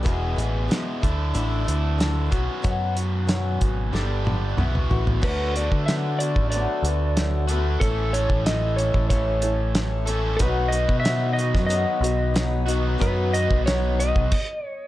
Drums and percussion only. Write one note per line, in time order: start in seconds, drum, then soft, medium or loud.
0.06 kick loud
0.06 closed hi-hat medium
0.38 closed hi-hat medium
0.71 snare loud
0.71 closed hi-hat medium
1.03 kick medium
1.03 closed hi-hat medium
1.35 closed hi-hat medium
1.68 closed hi-hat medium
2.00 snare medium
2.00 closed hi-hat medium
2.32 kick medium
2.32 closed hi-hat medium
2.64 kick medium
2.64 closed hi-hat medium
2.97 closed hi-hat medium
3.29 snare loud
3.29 closed hi-hat medium
3.61 kick medium
3.61 closed hi-hat medium
3.95 snare soft
4.27 high tom medium
4.58 mid tom medium
4.75 mid tom medium
4.91 floor tom medium
5.07 floor tom medium
5.23 kick loud
5.23 crash medium
5.56 closed hi-hat medium
5.72 kick medium
5.88 snare loud
5.88 closed hi-hat medium
6.20 closed hi-hat medium
6.36 kick medium
6.52 closed hi-hat medium
6.85 closed hi-hat medium
7.17 snare loud
7.17 closed hi-hat medium
7.48 closed hi-hat medium
7.81 kick loud
7.81 closed hi-hat medium
8.14 closed hi-hat medium
8.30 kick medium
8.46 snare loud
8.46 closed hi-hat medium
8.79 closed hi-hat medium
8.94 kick medium
9.10 kick medium
9.10 closed hi-hat medium
9.42 closed hi-hat medium
9.75 snare loud
9.75 closed hi-hat medium
10.07 closed hi-hat medium
10.39 kick loud
10.39 closed hi-hat medium
10.72 closed hi-hat medium
10.89 kick medium
11.05 snare loud
11.05 closed hi-hat medium
11.39 closed hi-hat medium
11.55 kick medium
11.55 snare soft
11.70 closed hi-hat medium
12.04 closed hi-hat medium
12.36 snare loud
12.36 closed hi-hat medium
12.68 closed hi-hat medium
13.01 kick loud
13.01 closed hi-hat medium
13.34 closed hi-hat medium
13.51 kick medium
13.67 snare loud
13.67 closed hi-hat medium
14.00 closed hi-hat medium
14.16 kick medium
14.31 kick loud
14.31 crash medium